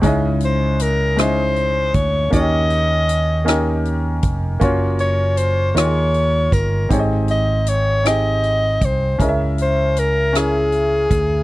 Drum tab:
HH |xxxxxx|xxxxxx|xxxxxx|xxxxxx|
SD |---r--|---r--|---r--|---r--|
BD |o----o|o----o|o----o|o----o|

HH |xxxxxx|
SD |---r--|
BD |o----o|